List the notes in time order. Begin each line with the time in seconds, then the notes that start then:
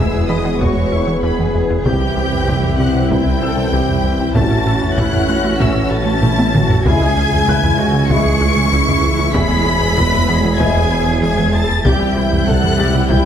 Already playing: E1 E2 E3 G#3 B3 E4 G#4 B4 E5 E6
0.00 G#4
0.14 E2 G#3, taiko low
0.29 E3 B3 D#5 B5 D#6 B6
0.45 E3 B3
0.59 E2 E3 F#4 C#5 C#6, taiko
0.77 E2
0.92 E2 E4
1.07 E3 B3
1.22 E2 E3 G#4 B4 B5
1.39 E3 B3, taiko low
1.55 E2 G#3
1.70 E2 E4
1.85 C2 C3 E3 C4 E4 G4 G5 G6, taiko
2.01 C2 C4
2.16 C2 C4
2.32 C2 E3, taiko low
2.48 C2 C3, taiko
2.63 C2 E3, taiko low
2.79 C3 G3 F#5 F#6
2.95 C3 G3
3.09 C2 C3 E4 G5 G6, taiko
3.26 C2
3.42 C2 C4 A4 E6
3.57 C3 G3
3.73 C2 C3 G4
3.88 C3 G3, taiko low
4.04 C2 E3
4.19 C2 C4
4.33 A1 A2 A3 C#4 F#4 E5 A5 A6, taiko
4.51 A2 A4
4.66 A2 A4
4.82 A2 C#4, taiko low
4.97 A2 A3 E4 F#5 F#6, taiko
5.13 A2 C#4, taiko low
5.28 A3 E4 F#4 F#6
5.44 A3 E4
5.60 A2 A3 E5 E6, taiko
5.75 A2
5.91 A2 A4 A5 A6
6.06 A3 E4
6.22 A2 A3 E4, taiko low-mid
6.38 A3 E4, taiko high
6.54 A2 C#4 F#4, taiko mid
6.69 A2 A4, taiko low
6.84 C#2 C#3 E3 G#3 E4 G#4 G#5 G#6, taiko
7.01 C#2 C#4
7.17 C#2 C#4
7.32 C#2 E3, taiko low
7.48 C#2 C#3 E4 F#6, taiko
7.63 C#2 E3, taiko low
7.78 C#3 G#3 F#4
7.93 C#3 G#3
8.09 C#2 C#3 G#3 E4 G#4 C#6 C#7, taiko
8.26 C#2
8.41 C#2 C#4
8.57 C#3 G#3
8.72 C#2 C#3 E4
8.88 C#3 G#3, taiko low
9.03 C#2 E3
9.19 C#2 C#4
9.34 E1 E2 E3 G#3 E4 G#4 E5 B5 B6, taiko
9.50 E2 E4
9.66 E2 E4
9.81 E2 G#3, taiko low
9.97 E2 E3 B4, taiko
10.13 E2 G#3, taiko low
10.28 E3 B3 G#4 B6
10.44 E3 B3
10.57 E2 E3 G#3 E4 G#5 G#6, taiko
10.77 E2
10.91 E2 E4
11.06 E3 B3
11.22 E2 E3 G#5 G#6
11.37 E3 B3, taiko low
11.52 E2 G#3 A5 A6
11.68 E2 E4
11.84 C2 C3 E3 G3 E4 G4 G5 G6, taiko
12.00 C2 C4
12.16 C2 C4 E4
12.32 C2 E3, taiko low
12.47 C2 C3 A4 F#5 F#6, taiko
12.62 C2 E3, taiko low
12.78 C3 G3 G4 A6
12.93 C3 G3
13.09 C2 C3 G3 E4 G5 G6, taiko